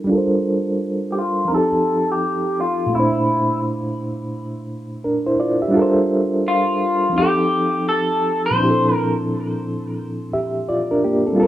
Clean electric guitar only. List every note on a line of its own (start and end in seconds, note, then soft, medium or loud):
1.12 1.17 G4 medium
1.18 1.48 F4 medium
1.48 1.52 A#4 medium
1.54 2.11 A4 medium
2.12 2.60 G4 medium
2.61 2.92 F4 medium
2.95 3.60 E4 medium
6.48 7.19 F4 medium
7.18 7.88 G4 medium
7.89 8.41 A4 medium
8.46 8.95 C5 medium
8.95 9.12 A#4 medium